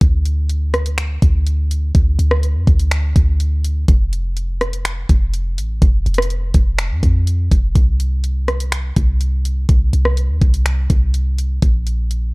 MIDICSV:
0, 0, Header, 1, 3, 480
1, 0, Start_track
1, 0, Tempo, 483871
1, 12, Time_signature, 4, 2, 24, 8
1, 12242, End_track
2, 0, Start_track
2, 0, Title_t, "808-style bass"
2, 0, Program_c, 0, 38
2, 13, Note_on_c, 0, 38, 114
2, 1173, Note_off_c, 0, 38, 0
2, 1213, Note_on_c, 0, 38, 102
2, 1904, Note_off_c, 0, 38, 0
2, 1932, Note_on_c, 0, 38, 115
2, 2163, Note_off_c, 0, 38, 0
2, 2170, Note_on_c, 0, 38, 110
2, 2532, Note_on_c, 0, 41, 102
2, 2547, Note_off_c, 0, 38, 0
2, 2646, Note_off_c, 0, 41, 0
2, 2652, Note_on_c, 0, 38, 110
2, 3113, Note_off_c, 0, 38, 0
2, 3133, Note_on_c, 0, 38, 105
2, 3824, Note_off_c, 0, 38, 0
2, 3853, Note_on_c, 0, 29, 115
2, 5013, Note_off_c, 0, 29, 0
2, 5054, Note_on_c, 0, 29, 110
2, 5531, Note_on_c, 0, 33, 92
2, 5546, Note_off_c, 0, 29, 0
2, 5760, Note_off_c, 0, 33, 0
2, 5772, Note_on_c, 0, 29, 113
2, 6003, Note_off_c, 0, 29, 0
2, 6013, Note_on_c, 0, 29, 110
2, 6473, Note_off_c, 0, 29, 0
2, 6492, Note_on_c, 0, 29, 112
2, 6853, Note_on_c, 0, 41, 100
2, 6868, Note_off_c, 0, 29, 0
2, 6967, Note_off_c, 0, 41, 0
2, 6973, Note_on_c, 0, 41, 99
2, 7433, Note_off_c, 0, 41, 0
2, 7455, Note_on_c, 0, 29, 103
2, 7684, Note_off_c, 0, 29, 0
2, 7692, Note_on_c, 0, 36, 112
2, 8852, Note_off_c, 0, 36, 0
2, 8894, Note_on_c, 0, 36, 106
2, 9584, Note_off_c, 0, 36, 0
2, 9611, Note_on_c, 0, 36, 113
2, 9842, Note_off_c, 0, 36, 0
2, 9852, Note_on_c, 0, 36, 112
2, 10212, Note_on_c, 0, 39, 102
2, 10227, Note_off_c, 0, 36, 0
2, 10326, Note_off_c, 0, 39, 0
2, 10331, Note_on_c, 0, 36, 112
2, 10792, Note_off_c, 0, 36, 0
2, 10813, Note_on_c, 0, 36, 105
2, 11504, Note_off_c, 0, 36, 0
2, 11531, Note_on_c, 0, 34, 113
2, 12242, Note_off_c, 0, 34, 0
2, 12242, End_track
3, 0, Start_track
3, 0, Title_t, "Drums"
3, 11, Note_on_c, 9, 42, 80
3, 12, Note_on_c, 9, 36, 126
3, 110, Note_off_c, 9, 42, 0
3, 111, Note_off_c, 9, 36, 0
3, 253, Note_on_c, 9, 42, 80
3, 352, Note_off_c, 9, 42, 0
3, 491, Note_on_c, 9, 42, 70
3, 590, Note_off_c, 9, 42, 0
3, 732, Note_on_c, 9, 37, 85
3, 732, Note_on_c, 9, 42, 47
3, 831, Note_off_c, 9, 37, 0
3, 831, Note_off_c, 9, 42, 0
3, 852, Note_on_c, 9, 42, 78
3, 951, Note_off_c, 9, 42, 0
3, 970, Note_on_c, 9, 26, 119
3, 974, Note_on_c, 9, 42, 83
3, 1069, Note_off_c, 9, 26, 0
3, 1074, Note_off_c, 9, 42, 0
3, 1213, Note_on_c, 9, 36, 98
3, 1213, Note_on_c, 9, 42, 78
3, 1312, Note_off_c, 9, 36, 0
3, 1312, Note_off_c, 9, 42, 0
3, 1454, Note_on_c, 9, 42, 79
3, 1553, Note_off_c, 9, 42, 0
3, 1697, Note_on_c, 9, 42, 82
3, 1796, Note_off_c, 9, 42, 0
3, 1932, Note_on_c, 9, 36, 127
3, 1932, Note_on_c, 9, 42, 82
3, 2031, Note_off_c, 9, 36, 0
3, 2031, Note_off_c, 9, 42, 0
3, 2174, Note_on_c, 9, 42, 86
3, 2273, Note_off_c, 9, 42, 0
3, 2293, Note_on_c, 9, 37, 102
3, 2392, Note_off_c, 9, 37, 0
3, 2412, Note_on_c, 9, 42, 68
3, 2511, Note_off_c, 9, 42, 0
3, 2652, Note_on_c, 9, 36, 89
3, 2654, Note_on_c, 9, 42, 46
3, 2751, Note_off_c, 9, 36, 0
3, 2753, Note_off_c, 9, 42, 0
3, 2772, Note_on_c, 9, 42, 77
3, 2872, Note_off_c, 9, 42, 0
3, 2891, Note_on_c, 9, 26, 118
3, 2895, Note_on_c, 9, 42, 80
3, 2990, Note_off_c, 9, 26, 0
3, 2994, Note_off_c, 9, 42, 0
3, 3133, Note_on_c, 9, 36, 99
3, 3133, Note_on_c, 9, 42, 77
3, 3232, Note_off_c, 9, 36, 0
3, 3232, Note_off_c, 9, 42, 0
3, 3373, Note_on_c, 9, 42, 81
3, 3472, Note_off_c, 9, 42, 0
3, 3615, Note_on_c, 9, 42, 81
3, 3715, Note_off_c, 9, 42, 0
3, 3852, Note_on_c, 9, 36, 125
3, 3852, Note_on_c, 9, 42, 85
3, 3951, Note_off_c, 9, 36, 0
3, 3952, Note_off_c, 9, 42, 0
3, 4095, Note_on_c, 9, 42, 85
3, 4194, Note_off_c, 9, 42, 0
3, 4332, Note_on_c, 9, 42, 73
3, 4431, Note_off_c, 9, 42, 0
3, 4574, Note_on_c, 9, 37, 82
3, 4574, Note_on_c, 9, 42, 45
3, 4673, Note_off_c, 9, 37, 0
3, 4673, Note_off_c, 9, 42, 0
3, 4694, Note_on_c, 9, 42, 78
3, 4793, Note_off_c, 9, 42, 0
3, 4812, Note_on_c, 9, 26, 121
3, 4816, Note_on_c, 9, 42, 85
3, 4911, Note_off_c, 9, 26, 0
3, 4915, Note_off_c, 9, 42, 0
3, 5053, Note_on_c, 9, 36, 99
3, 5053, Note_on_c, 9, 42, 75
3, 5152, Note_off_c, 9, 36, 0
3, 5152, Note_off_c, 9, 42, 0
3, 5293, Note_on_c, 9, 42, 80
3, 5392, Note_off_c, 9, 42, 0
3, 5536, Note_on_c, 9, 42, 82
3, 5636, Note_off_c, 9, 42, 0
3, 5772, Note_on_c, 9, 36, 127
3, 5772, Note_on_c, 9, 42, 85
3, 5871, Note_off_c, 9, 42, 0
3, 5872, Note_off_c, 9, 36, 0
3, 6014, Note_on_c, 9, 42, 54
3, 6093, Note_off_c, 9, 42, 0
3, 6093, Note_on_c, 9, 42, 71
3, 6134, Note_on_c, 9, 37, 98
3, 6173, Note_off_c, 9, 42, 0
3, 6173, Note_on_c, 9, 42, 85
3, 6233, Note_off_c, 9, 37, 0
3, 6252, Note_off_c, 9, 42, 0
3, 6252, Note_on_c, 9, 42, 72
3, 6351, Note_off_c, 9, 42, 0
3, 6489, Note_on_c, 9, 42, 77
3, 6492, Note_on_c, 9, 36, 93
3, 6588, Note_off_c, 9, 42, 0
3, 6591, Note_off_c, 9, 36, 0
3, 6731, Note_on_c, 9, 26, 120
3, 6735, Note_on_c, 9, 42, 82
3, 6830, Note_off_c, 9, 26, 0
3, 6835, Note_off_c, 9, 42, 0
3, 6974, Note_on_c, 9, 36, 97
3, 6974, Note_on_c, 9, 42, 78
3, 7073, Note_off_c, 9, 36, 0
3, 7073, Note_off_c, 9, 42, 0
3, 7214, Note_on_c, 9, 42, 79
3, 7313, Note_off_c, 9, 42, 0
3, 7455, Note_on_c, 9, 36, 93
3, 7457, Note_on_c, 9, 42, 79
3, 7554, Note_off_c, 9, 36, 0
3, 7556, Note_off_c, 9, 42, 0
3, 7692, Note_on_c, 9, 42, 82
3, 7693, Note_on_c, 9, 36, 127
3, 7792, Note_off_c, 9, 36, 0
3, 7792, Note_off_c, 9, 42, 0
3, 7935, Note_on_c, 9, 42, 85
3, 8034, Note_off_c, 9, 42, 0
3, 8172, Note_on_c, 9, 42, 75
3, 8271, Note_off_c, 9, 42, 0
3, 8413, Note_on_c, 9, 42, 45
3, 8414, Note_on_c, 9, 37, 80
3, 8513, Note_off_c, 9, 37, 0
3, 8513, Note_off_c, 9, 42, 0
3, 8534, Note_on_c, 9, 42, 79
3, 8633, Note_off_c, 9, 42, 0
3, 8651, Note_on_c, 9, 26, 115
3, 8656, Note_on_c, 9, 42, 83
3, 8751, Note_off_c, 9, 26, 0
3, 8755, Note_off_c, 9, 42, 0
3, 8892, Note_on_c, 9, 42, 77
3, 8893, Note_on_c, 9, 36, 97
3, 8991, Note_off_c, 9, 42, 0
3, 8992, Note_off_c, 9, 36, 0
3, 9133, Note_on_c, 9, 42, 79
3, 9232, Note_off_c, 9, 42, 0
3, 9376, Note_on_c, 9, 42, 80
3, 9475, Note_off_c, 9, 42, 0
3, 9611, Note_on_c, 9, 42, 84
3, 9612, Note_on_c, 9, 36, 126
3, 9711, Note_off_c, 9, 36, 0
3, 9711, Note_off_c, 9, 42, 0
3, 9853, Note_on_c, 9, 42, 87
3, 9953, Note_off_c, 9, 42, 0
3, 9972, Note_on_c, 9, 37, 92
3, 10071, Note_off_c, 9, 37, 0
3, 10090, Note_on_c, 9, 42, 70
3, 10190, Note_off_c, 9, 42, 0
3, 10332, Note_on_c, 9, 36, 89
3, 10333, Note_on_c, 9, 42, 45
3, 10431, Note_off_c, 9, 36, 0
3, 10432, Note_off_c, 9, 42, 0
3, 10454, Note_on_c, 9, 42, 78
3, 10553, Note_off_c, 9, 42, 0
3, 10572, Note_on_c, 9, 26, 116
3, 10576, Note_on_c, 9, 42, 83
3, 10671, Note_off_c, 9, 26, 0
3, 10675, Note_off_c, 9, 42, 0
3, 10812, Note_on_c, 9, 36, 93
3, 10812, Note_on_c, 9, 42, 80
3, 10911, Note_off_c, 9, 42, 0
3, 10912, Note_off_c, 9, 36, 0
3, 11051, Note_on_c, 9, 42, 78
3, 11150, Note_off_c, 9, 42, 0
3, 11294, Note_on_c, 9, 42, 84
3, 11393, Note_off_c, 9, 42, 0
3, 11531, Note_on_c, 9, 36, 121
3, 11531, Note_on_c, 9, 42, 84
3, 11630, Note_off_c, 9, 36, 0
3, 11630, Note_off_c, 9, 42, 0
3, 11771, Note_on_c, 9, 42, 82
3, 11871, Note_off_c, 9, 42, 0
3, 12011, Note_on_c, 9, 42, 71
3, 12110, Note_off_c, 9, 42, 0
3, 12242, End_track
0, 0, End_of_file